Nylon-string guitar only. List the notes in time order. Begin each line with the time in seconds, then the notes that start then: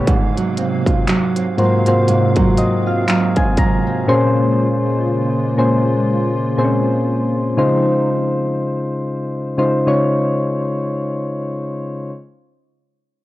Already playing: G3 B3
0.07 G#2
0.37 F#3
0.58 C4
0.87 F4
1.08 F#3
1.37 C4
1.58 F#3
1.87 C4
2.07 G#2
2.36 F#3
2.57 C4
2.86 F4
3.07 F#3
3.37 C4
3.57 F#3
3.87 C4